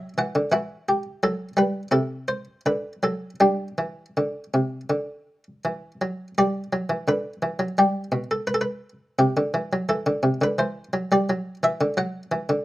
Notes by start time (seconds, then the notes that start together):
Already playing: D4 E5
0.18 E3 F#5
0.35 D3
0.52 E3 E4 F#4
0.89 G4
1.23 F#3 A4
1.57 G3 B4
1.91 C3 E4 A4
2.28 C5
2.66 D3 B4
3.03 F#3 A4
3.40 G3 D4 G4
3.78 E3
4.17 D3
4.54 C3
4.90 D3
5.65 E3
6.01 F#3
6.38 G3 D5
6.73 F#3
6.90 E3
7.08 D3 B4
7.42 E3
7.59 F#3
7.78 G3 G4
8.12 B2
8.31 A4
8.47 B4
8.54 A4
8.61 B4
9.19 C3 G4
9.37 D3
9.54 E3
9.73 F#3
9.89 E3 A4
10.06 D3
10.23 C3
10.41 D3 B4
10.58 E3 C5
10.93 F#3
11.12 G3 D5
11.30 F#3
11.63 E3 E5
11.81 D3
11.97 F#3 F#5
12.32 E3
12.49 D3